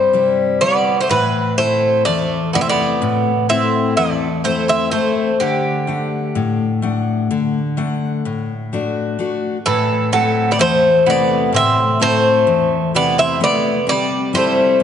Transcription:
Already playing: steel-string acoustic guitar G2, bouzouki G3 C5
0.13 steel-string acoustic guitar C3 G3 E4
0.61 steel-string acoustic guitar G3 E4, bouzouki B3 D5
1.01 bouzouki A3 C5
1.09 steel-string acoustic guitar A2, bouzouki E3 B4
1.58 steel-string acoustic guitar A3 C4 E4, bouzouki A3 C5
2.05 steel-string acoustic guitar E2, bouzouki A3 D5
2.53 steel-string acoustic guitar C3 A3 E4, bouzouki B3 D5
2.61 bouzouki C4 E5
2.69 bouzouki B3 D5
3.02 steel-string acoustic guitar A2
3.49 steel-string acoustic guitar A3 C4 E4, bouzouki C4 E5
3.97 steel-string acoustic guitar E2, bouzouki A3 D5
4.44 bouzouki A3 C5, steel-string acoustic guitar A3 C4 E4
4.68 bouzouki C4 E5
4.91 steel-string acoustic guitar A3 C4 E4, bouzouki A3 C5
5.40 steel-string acoustic guitar D3, bouzouki D3 G4
5.87 steel-string acoustic guitar A3 D4 F#5
6.35 steel-string acoustic guitar A2
6.82 steel-string acoustic guitar A3 D4 F#5
7.31 steel-string acoustic guitar D3
7.77 steel-string acoustic guitar A3 D4 F#5
8.25 steel-string acoustic guitar A2
8.73 steel-string acoustic guitar A3 D4 F#4
9.19 steel-string acoustic guitar A3 D4 F#4
9.66 steel-string acoustic guitar A2, bouzouki E3 A4
10.12 bouzouki F#3 A4, steel-string acoustic guitar A3 C4 E4
10.51 bouzouki B3 D5
10.59 steel-string acoustic guitar E2, bouzouki A3 C5
11.06 steel-string acoustic guitar C3 A3 E4, bouzouki B3 D5
11.53 steel-string acoustic guitar A2, bouzouki C4 E5
12.00 steel-string acoustic guitar A3 C4 E4, bouzouki A3 C5
12.47 steel-string acoustic guitar E2
12.94 steel-string acoustic guitar C3 A3 E4, bouzouki B3 D5
13.18 bouzouki C4 E5
13.40 steel-string acoustic guitar A3 E4, bouzouki B3 D5
13.87 steel-string acoustic guitar C3, bouzouki G3 D5
14.33 steel-string acoustic guitar G3 C4 E4, bouzouki C5
14.37 bouzouki A3
14.80 steel-string acoustic guitar G2

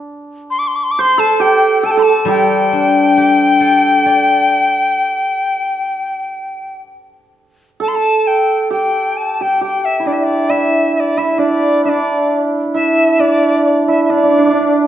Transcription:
Already playing: hammered dulcimer D4
0.50 dizi C6
0.59 dizi D6
0.67 dizi C6
0.75 dizi D6
0.84 dizi C6
0.91 dizi D6
0.99 hammered dulcimer C5, dizi C6
1.18 hammered dulcimer A4, dizi A5
1.40 hammered dulcimer G4, dizi G5
1.83 hammered dulcimer A4, dizi A5
1.91 dizi G5
1.97 hammered dulcimer A4, dizi C6
2.02 dizi A5
2.25 guzheng G3, hammered dulcimer G4
2.30 dizi G5
2.73 guzheng D4
3.17 guzheng G4
3.60 guzheng A4
4.06 guzheng D5
7.80 hammered dulcimer A4, dizi A5
7.88 dizi C6
7.96 dizi A5
8.27 dizi G5
8.70 hammered dulcimer G4, dizi G5
9.17 dizi A5
9.34 dizi A5
9.41 hammered dulcimer G4, dizi G5
9.61 hammered dulcimer G4, dizi G5
9.85 dizi E5
10.00 hammered dulcimer E4
10.06 hammered dulcimer D4, dizi D5
10.13 dizi E5
10.19 dizi E5
10.24 dizi D5
10.49 hammered dulcimer E4, dizi E5
10.95 dizi E5
11.00 dizi D5
11.17 hammered dulcimer E4, dizi E5
11.38 hammered dulcimer D4, dizi D5
11.85 hammered dulcimer D4, dizi E5
11.89 dizi D5
12.74 hammered dulcimer E4, dizi E5
13.19 hammered dulcimer D4, dizi D5
13.65 dizi D5
13.88 hammered dulcimer E4, dizi E5
14.04 dizi E5
14.10 hammered dulcimer D4, dizi D5
14.16 hammered dulcimer D4
14.23 hammered dulcimer D4
14.30 hammered dulcimer D4
14.38 hammered dulcimer D4
14.45 hammered dulcimer D4
14.53 hammered dulcimer D4
14.60 hammered dulcimer D4

